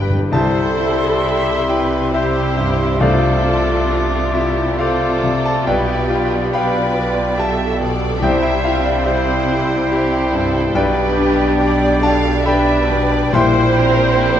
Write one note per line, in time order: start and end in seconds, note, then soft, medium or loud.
0.00 0.29 G2 soft
0.00 0.09 G2 medium
0.00 0.20 D4 soft
0.00 0.29 G4 soft
0.00 0.11 B4 soft
0.00 0.29 B4 soft
0.00 0.12 D5 soft
0.00 0.11 G5 soft
0.10 0.16 G2 medium
0.18 0.25 G2 medium
0.32 2.96 C2 medium
0.32 5.63 C2 soft
0.32 5.62 C3 medium
0.32 1.65 C3 medium
0.32 0.67 G3 medium
0.32 2.10 G3 medium
0.32 0.67 E4 medium
0.32 2.09 E4 medium
0.32 2.10 G4 medium
0.32 1.65 A4 medium
0.32 1.19 C5 medium
0.32 1.66 C5 soft
0.32 2.10 E5 medium
0.32 1.66 E5 medium
0.32 1.65 A5 medium
0.32 2.09 C6 medium
0.78 1.51 E4 soft
1.24 1.96 G4 soft
1.24 1.69 E5 medium
1.69 2.40 E4 soft
1.69 2.13 G4 medium
1.69 2.13 B4 medium
1.69 2.10 G5 medium
2.13 3.03 G3 soft
2.13 3.00 E4 medium
2.13 3.00 G4 soft
2.13 2.83 G4 soft
2.13 3.02 G4 medium
2.13 3.00 C5 soft
2.13 2.97 C5 soft
2.13 3.01 E5 medium
2.13 2.97 E5 medium
2.13 3.02 C6 medium
2.57 3.00 G2 soft
3.00 5.63 C2 medium
3.00 4.31 C3 medium
3.00 3.33 A3 medium
3.00 4.79 A3 medium
3.00 3.33 D4 soft
3.00 4.79 D4 medium
3.00 4.32 F4 medium
3.00 4.79 F4 medium
3.00 3.88 A4 medium
3.00 4.32 C5 soft
3.00 4.78 D5 medium
3.00 4.32 D5 medium
3.00 4.31 F5 medium
3.00 4.80 D6 medium
3.45 4.17 F4 soft
3.90 4.35 F4 soft
3.90 4.62 A4 soft
4.34 4.78 E4 medium
4.34 5.06 F4 soft
4.34 4.79 G4 soft
4.34 4.76 E5 medium
4.79 5.70 A3 soft
4.79 5.65 F4 soft
4.79 5.66 F4 medium
4.79 5.46 F4 medium
4.79 5.67 A4 medium
4.79 5.50 A4 soft
4.79 5.42 C5 soft
4.79 5.65 D5 medium
4.79 5.41 D5 soft
4.79 5.41 F5 medium
4.79 5.65 D6 soft
5.23 5.67 C3 soft
5.45 5.67 A4 soft
5.45 5.66 A5 medium
5.65 8.18 B1 medium
5.65 8.19 B1 medium
5.65 8.18 B2 medium
5.65 5.98 G3 medium
5.65 6.53 G3 medium
5.65 6.11 E4 medium
5.65 5.98 F4 medium
5.65 6.37 F4 soft
5.65 6.52 G4 medium
5.65 6.54 B4 medium
5.65 6.50 B4 soft
5.65 6.52 D5 medium
5.65 6.50 D5 soft
5.65 6.49 G5 medium
5.65 6.52 G5 medium
6.09 6.52 D4 medium
6.09 6.79 F4 soft
6.53 7.94 G3 soft
6.53 7.38 D4 soft
6.53 7.94 F4 medium
6.53 7.22 G4 soft
6.53 7.39 B4 medium
6.53 7.37 D5 medium
6.53 7.93 D5 medium
6.53 7.36 F5 medium
6.53 7.94 G5 medium
6.53 7.36 G5 medium
6.53 7.35 B5 medium
6.96 7.64 F4 soft
7.38 9.03 D4 medium
7.38 8.05 G4 soft
7.38 8.22 A4 medium
7.38 7.81 E5 medium
7.38 8.19 A5 medium
7.80 8.22 B2 soft
7.80 8.21 D5 medium
8.21 10.71 C2 medium
8.21 10.75 C2 soft
8.21 10.75 C3 medium
8.21 8.53 G3 medium
8.21 9.02 G3 medium
8.21 8.52 E4 soft
8.21 9.02 E4 medium
8.21 8.42 G4 medium
8.21 9.02 C5 medium
8.21 8.42 C5 medium
8.21 9.06 E5 medium
8.21 8.41 E5 soft
8.21 8.42 G5 medium
8.21 9.02 G5 medium
8.42 8.63 E4 medium
8.42 8.62 E5 medium
8.63 9.31 E4 soft
8.63 8.84 F4 medium
8.63 8.84 F5 medium
8.84 9.06 D4 medium
8.84 9.05 D5 medium
9.05 10.71 G3 soft
9.05 9.90 E4 medium
9.05 9.88 E4 soft
9.05 10.72 E4 medium
9.05 9.73 G4 soft
9.05 9.90 C5 medium
9.05 10.72 C5 medium
9.05 9.87 C5 soft
9.05 9.86 E5 medium
9.05 10.72 G5 medium
9.48 10.16 E4 soft
9.90 10.73 E4 medium
9.90 10.33 G4 medium
9.90 10.59 G4 soft
10.33 10.75 G2 soft
10.33 10.75 A4 medium
10.74 13.29 B1 medium
10.74 13.30 B1 medium
10.74 13.29 B2 medium
10.74 11.07 G3 medium
10.74 12.43 G3 medium
10.74 12.42 D4 medium
10.74 11.07 D4 medium
10.74 11.98 G4 medium
10.74 11.60 B4 medium
10.74 11.99 B4 medium
10.74 12.43 D5 medium
10.74 11.99 D5 medium
10.74 11.99 G5 medium
10.74 12.43 G5 medium
11.18 11.86 D4 medium
11.60 12.29 G4 soft
11.60 12.02 D5 medium
12.02 12.72 D4 soft
12.02 12.45 A4 medium
12.02 12.46 F5 medium
12.02 12.43 A5 medium
12.45 13.32 G3 medium
12.45 13.32 D4 medium
12.45 13.16 G4 medium
12.45 13.33 B4 medium
12.45 13.36 D5 medium
12.45 13.30 D5 medium
12.45 12.90 E5 medium
12.45 13.32 G5 medium
12.45 13.30 G5 medium
12.45 13.29 B5 medium
12.89 13.34 B2 medium
12.89 13.33 D5 medium
13.33 14.40 A#1 medium
13.33 14.40 A#2 medium
13.33 13.67 G3 medium
13.33 14.40 G3 medium
13.33 14.40 E4 medium
13.33 13.67 E4 medium
13.33 14.40 C5 medium
13.33 13.78 C5 medium
13.33 14.40 C5 medium
13.33 14.40 E5 medium
13.33 14.40 G5 medium
13.33 14.40 C6 medium
13.78 14.40 C4 medium
13.78 14.23 A#4 medium
14.24 14.40 G4 soft
14.24 14.40 A4 medium